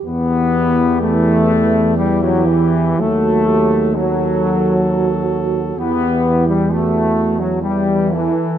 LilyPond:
<<
  \new Staff \with { instrumentName = "Flugelhorn" } { \time 3/4 \key e \minor \tempo 4 = 64 g'2 g'4 | a'4 a'2 | g'4. r8 g'8 a'8 | }
  \new Staff \with { instrumentName = "French horn section" } { \time 3/4 \key e \minor r4 e'2 | fis'8 g'8 a'4 fis'4 | e'4 fis'4 e'4 | }
  \new Staff \with { instrumentName = "Trombone section" } { \clef bass \time 3/4 \key e \minor b4 a4 g16 fis16 e8 | a4 fis4. r8 | b8. g16 a8. fis16 g8 e8 | }
  \new Staff \with { instrumentName = "Trombone" } { \clef bass \time 3/4 \key e \minor e2 e4 | fis4 fis2 | e4. r8 e4 | }
  \new Staff \with { instrumentName = "Tuba" } { \clef bass \time 3/4 \key e \minor e,2. | dis,2. | e,2~ e,8 r8 | }
>>